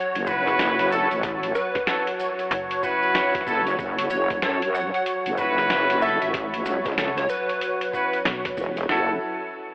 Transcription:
0.00 8.85 F#3 medium
0.00 8.85 F#4 medium
0.00 0.27 C#5 loud
0.00 8.89 C#5 medium
0.15 1.08 F#1 loud
0.15 closed hi-hat soft
0.15 maracas soft
0.27 0.88 C#4 loud
0.27 0.88 E4 medium
0.27 0.88 F#4 medium
0.27 0.88 B4 loud
0.27 kick medium
0.27 maracas medium
0.47 snare medium
0.47 maracas soft
0.59 snare loud
0.59 closed hi-hat medium
0.59 maracas medium
0.79 snare soft
0.79 closed hi-hat medium
0.79 maracas soft
0.91 1.09 C#4 medium
0.91 1.09 E4 medium
0.91 1.09 F#4 medium
0.91 1.09 A4 loud
0.91 maracas medium
1.11 1.53 A1 loud
1.11 closed hi-hat soft
1.11 maracas soft
1.23 kick loud
1.23 closed hi-hat medium
1.23 maracas soft
1.43 closed hi-hat medium
1.43 maracas soft
1.55 2.07 B4 medium
1.55 snare soft
1.55 maracas medium
1.75 kick medium
1.75 snare medium
1.75 closed hi-hat soft
1.75 maracas soft
1.87 2.05 C#4 medium
1.87 2.05 E4 medium
1.87 2.05 F#4 medium
1.87 2.05 A4 medium
1.87 snare loud
1.87 closed hi-hat medium
1.87 maracas medium
2.07 closed hi-hat soft
2.20 maracas medium
2.39 closed hi-hat soft
2.39 maracas soft
2.51 3.45 F#1 loud
2.51 closed hi-hat medium
2.51 maracas soft
2.71 closed hi-hat soft
2.71 maracas soft
2.83 3.44 C#4 loud
2.83 3.44 E4 loud
2.83 3.44 F#4 loud
2.83 3.44 B4 loud
2.83 kick medium
2.83 maracas medium
3.02 maracas soft
3.15 snare loud
3.15 closed hi-hat medium
3.15 maracas soft
3.34 kick loud
3.34 closed hi-hat medium
3.34 maracas soft
3.41 snare soft
3.47 3.77 F#1 medium
3.47 3.65 C#4 medium
3.47 3.65 E4 medium
3.47 3.65 F#4 medium
3.47 3.65 A4 loud
3.47 kick medium
3.47 maracas medium
3.67 closed hi-hat soft
3.67 maracas soft
3.79 4.09 F#1 loud
3.79 kick loud
3.79 maracas medium
3.98 closed hi-hat medium
3.98 maracas soft
4.10 4.41 F#1 loud
4.10 4.38 C#5 medium
4.10 maracas medium
4.30 kick loud
4.30 closed hi-hat soft
4.30 maracas soft
4.42 4.91 F#2 medium
4.42 4.60 C#4 medium
4.42 4.60 E4 medium
4.42 4.60 F#4 medium
4.42 4.60 A4 medium
4.42 4.70 C#5 medium
4.42 snare loud
4.42 closed hi-hat medium
4.42 maracas soft
4.62 closed hi-hat medium
4.74 4.87 F#5 medium
4.74 maracas medium
4.94 5.02 F#5 medium
4.94 closed hi-hat soft
4.94 maracas soft
5.06 closed hi-hat medium
5.06 maracas medium
5.26 6.19 F#1 loud
5.26 closed hi-hat soft
5.26 maracas soft
5.38 5.99 C#4 loud
5.38 5.99 E4 loud
5.38 5.99 F#4 medium
5.38 5.99 B4 loud
5.38 kick medium
5.38 maracas medium
5.58 snare medium
5.58 maracas soft
5.70 snare loud
5.70 closed hi-hat medium
5.70 maracas medium
5.90 snare soft
5.90 closed hi-hat medium
5.90 maracas soft
6.02 6.20 C#4 medium
6.02 6.20 E4 medium
6.02 6.20 F#4 medium
6.02 6.20 A4 loud
6.02 6.15 E5 medium
6.02 maracas medium
6.21 6.64 A1 loud
6.21 6.29 E5 medium
6.21 closed hi-hat soft
6.21 maracas soft
6.34 kick loud
6.34 closed hi-hat medium
6.34 maracas soft
6.54 closed hi-hat medium
6.54 maracas soft
6.66 7.28 C#2 loud
6.66 snare soft
6.66 maracas medium
6.85 kick loud
6.85 snare soft
6.85 closed hi-hat soft
6.85 maracas soft
6.92 snare soft
6.98 7.16 C#4 medium
6.98 7.16 E4 medium
6.98 7.16 F#4 medium
6.98 7.16 A4 medium
6.98 snare loud
6.98 snare soft
6.98 closed hi-hat medium
6.98 maracas medium
7.08 snare soft
7.17 7.27 C#5 medium
7.17 closed hi-hat medium
7.17 maracas soft
7.29 8.21 B4 loud
7.29 maracas medium
7.49 closed hi-hat soft
7.49 maracas soft
7.61 closed hi-hat medium
7.61 maracas soft
7.81 closed hi-hat medium
7.81 maracas soft
7.93 8.19 C#4 medium
7.93 8.19 E4 medium
7.93 8.19 F#4 medium
7.93 8.19 B4 medium
7.93 kick medium
7.93 maracas medium
8.13 closed hi-hat soft
8.13 maracas soft
8.25 8.55 B1 loud
8.25 snare loud
8.25 closed hi-hat medium
8.25 maracas medium
8.45 kick loud
8.45 snare soft
8.45 closed hi-hat medium
8.45 maracas soft
8.57 8.87 E1 loud
8.57 kick medium
8.57 maracas loud
8.77 closed hi-hat soft
8.77 maracas soft
8.89 9.19 F#1 loud
8.89 9.19 F#3 medium
8.89 9.14 C#4 medium
8.89 9.14 E4 medium
8.89 9.19 E4 medium
8.89 9.14 F#4 medium
8.89 9.19 A4 medium
8.89 9.14 A4 medium
8.89 snare loud
8.89 floor tom loud

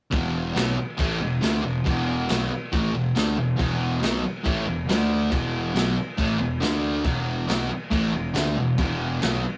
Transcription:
0.11 0.53 E1 medium
0.11 0.54 E2 medium
0.11 0.53 B2 medium
0.11 0.55 E3 loud
0.11 kick loud
0.11 crash medium
0.54 0.75 B1 loud
0.54 0.76 B2 medium
0.54 0.76 F#3 medium
0.54 0.77 B3 loud
0.54 snare loud
0.54 crash medium
0.77 muted distorted electric guitar stroke medium
0.77 muted fingered electric bass stroke soft
0.97 1.19 A1 medium
0.97 1.19 A2 loud
0.97 1.19 E3 medium
0.97 1.20 A3 medium
0.97 kick loud
0.97 crash medium
1.20 1.41 E1 medium
1.20 1.38 E2 medium
1.20 1.38 B2 medium
1.41 1.62 D2 loud
1.41 1.63 D3 medium
1.41 1.63 A3 medium
1.41 1.64 D4 medium
1.41 snare loud
1.41 crash medium
1.63 1.84 E1 medium
1.63 1.81 E2 medium
1.63 1.81 B2 medium
1.84 2.26 E1 loud
1.84 2.27 E2 loud
1.84 2.27 B2 medium
1.84 2.29 E3 loud
1.84 kick loud
1.84 crash medium
2.28 2.49 B1 loud
2.28 2.49 B2 loud
2.28 2.50 F#3 loud
2.28 2.51 B3 loud
2.28 snare loud
2.28 crash medium
2.51 muted distorted electric guitar stroke medium
2.51 muted fingered electric bass stroke soft
2.72 2.93 A1 loud
2.72 2.93 A2 medium
2.72 2.94 E3 medium
2.72 2.94 A3 medium
2.72 kick loud
2.72 crash medium
2.94 3.14 E1 medium
2.94 3.11 E2 medium
2.94 3.11 B2 medium
3.15 3.35 D2 loud
3.15 3.36 D3 medium
3.15 3.36 A3 medium
3.15 3.37 D4 loud
3.15 snare loud
3.15 crash medium
3.37 3.57 E1 medium
3.37 3.54 E2 medium
3.37 3.54 B2 medium
3.57 3.99 E1 medium
3.57 4.00 E2 loud
3.57 3.99 B2 loud
3.57 4.01 E3 loud
3.57 kick loud
3.57 crash medium
4.01 4.22 B1 loud
4.01 4.22 B2 medium
4.01 4.23 F#3 loud
4.01 4.23 B3 loud
4.01 snare loud
4.01 crash medium
4.23 muted distorted electric guitar stroke medium
4.23 muted fingered electric bass stroke soft
4.44 4.66 A1 loud
4.44 4.66 A2 loud
4.44 4.66 E3 loud
4.44 4.67 A3 loud
4.44 kick loud
4.44 crash medium
4.66 4.87 E1 medium
4.66 4.84 E2 medium
4.66 4.87 B2 medium
4.87 5.29 D2 loud
4.87 5.30 D3 medium
4.87 5.31 A3 medium
4.87 5.32 D4 medium
4.87 snare loud
4.87 crash medium
5.30 5.72 E1 medium
5.30 5.74 E2 medium
5.30 5.73 B2 loud
5.30 5.75 E3 loud
5.30 kick loud
5.30 crash medium
5.74 5.94 B1 loud
5.74 5.95 B2 loud
5.74 5.96 F#3 loud
5.74 5.96 B3 loud
5.74 snare loud
5.74 crash medium
5.97 muted fingered electric bass stroke soft
5.97 muted distorted electric guitar stroke medium
6.17 6.39 A1 medium
6.17 6.39 A2 medium
6.17 6.39 E3 medium
6.17 6.40 A3 medium
6.17 kick loud
6.17 crash medium
6.39 6.60 E1 medium
6.39 6.57 E2 medium
6.39 6.57 B2 medium
6.60 7.02 D2 medium
6.60 7.04 D3 medium
6.60 7.04 A3 medium
6.60 7.05 D4 loud
6.60 snare loud
6.60 crash medium
7.04 7.45 E1 medium
7.04 7.47 E2 medium
7.04 7.46 B2 medium
7.04 7.48 E3 loud
7.04 kick loud
7.04 crash medium
7.48 7.68 B1 loud
7.48 7.69 B2 medium
7.48 7.69 F#3 loud
7.48 7.70 B3 loud
7.48 snare loud
7.48 crash medium
7.69 muted distorted electric guitar stroke medium
7.69 muted fingered electric bass stroke soft
7.91 8.12 A1 loud
7.91 8.12 A2 medium
7.91 8.13 E3 loud
7.91 8.13 A3 loud
7.91 kick loud
7.91 crash medium
8.13 8.33 E1 medium
8.13 8.31 E2 medium
8.13 8.31 B2 medium
8.34 8.55 D2 loud
8.34 8.56 D3 medium
8.34 8.56 A3 medium
8.34 8.57 D4 medium
8.34 snare loud
8.34 crash medium
8.56 8.76 E1 medium
8.56 8.74 E2 medium
8.56 8.74 B2 medium
8.78 9.19 E1 loud
8.78 9.21 E2 medium
8.78 9.20 B2 medium
8.78 9.22 E3 loud
8.78 kick loud
8.78 crash medium
9.21 9.42 B1 loud
9.21 9.43 B2 medium
9.21 9.43 F#3 loud
9.21 9.44 B3 loud
9.21 snare loud
9.21 crash medium
9.44 muted fingered electric bass stroke soft
9.44 muted distorted electric guitar stroke medium

